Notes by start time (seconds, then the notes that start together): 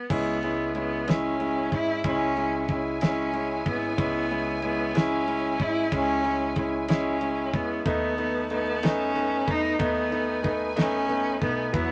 Already playing: B3
0.10 C#2 G#3 B3 C#4 E4 C#5 G#5, kick, crash
0.43 G#3 C#4 E4, ride
0.75 G#3 B3 C#4 E4, ride
1.07 G#3 C#4 E4, snare, ride
1.39 G#3 C#4 E4, ride
1.72 G#1 G#3 C#4 E4, kick, ride
2.04 C#2 G#3 C#4 E4, kick, ride
2.37 G#3 C#4 E4, ride
2.68 G#3 C#4 E4, kick, ride
3.01 G#3 C#4 E4, snare, ride
3.33 G#3 C#4 E4, ride
3.65 G#1 G#3 B3 C#4 E4, kick, ride
3.97 C#2 G#3 B3 C#4 E4, kick, ride
4.31 G#3 C#4 E4, ride
4.62 G#3 B3 C#4 E4, ride
4.95 G#3 C#4 E4, snare, ride
5.28 G#3 C#4 E4, ride
5.59 G#1 G#3 C#4 E4, kick, ride
5.92 C#2 G#3 C#4 E4, kick, ride
6.24 G#3 C#4 E4, ride
6.56 G#3 C#4 E4, kick, ride
6.88 G#3 C#4 E4, snare, ride
7.21 G#3 C#4 E4, ride
7.53 E2 G#3 B3 C#4 E4, kick, ride
7.86 D#2 A3 B3 D#4 B4 A5, kick, ride
8.18 A3 B3 D#4, ride
8.50 A3 B3 D#4, ride
8.83 A3 B3 C#4 D#4, snare, ride
9.14 A3 B3 D#4, ride
9.46 E2 A3 B3 D#4, kick, ride
9.50 D#4
9.79 D#2 A3 B3 D#4 G#5, kick, ride
10.11 A3 B3 D#4, ride
10.43 A3 B3 D#4, kick, ride
10.76 A3 B3 C#4 D#4, snare, ride
11.09 A3 B3 D#4, ride
11.41 B1 A3 B3 D#4, kick, ride
11.73 E2 F#3 B3 E4 F#5, kick, ride